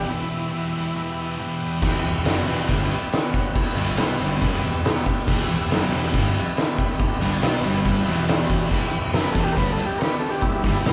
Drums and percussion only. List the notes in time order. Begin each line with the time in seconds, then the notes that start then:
1.82 kick, crash
2.05 ride
2.25 snare, ride
2.48 ride
2.69 kick, ride
2.91 ride
3.12 snare, ride
3.34 kick, ride
3.55 kick, ride
3.76 ride
3.97 snare, ride
4.21 ride
4.42 kick, ride
4.64 ride
4.85 snare, ride
5.06 kick, ride
5.19 snare
5.28 kick, crash
5.49 ride
5.71 snare, ride
5.92 ride
6.14 kick, ride
6.37 ride
6.57 snare, ride
6.78 kick, ride
6.91 snare
6.99 kick, ride
7.22 ride
7.42 snare, ride
7.64 ride
7.86 kick, ride
8.07 ride
8.28 snare, ride
8.50 kick, ride
8.71 kick, crash
8.93 ride
9.13 snare, ride
9.35 kick, ride
9.57 kick, ride
9.80 ride
10.01 snare, ride
10.20 ride
10.32 snare
10.41 kick, ride
10.64 kick, ride
10.85 snare, ride